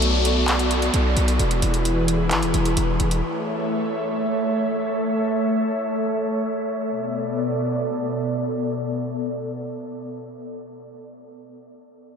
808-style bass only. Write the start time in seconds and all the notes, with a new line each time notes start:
Already playing: B1
0.94 B1
1.17 B1
1.39 E1
1.62 E1
2.31 G#1
2.42 E1
2.54 E1
2.77 E1
3.00 E1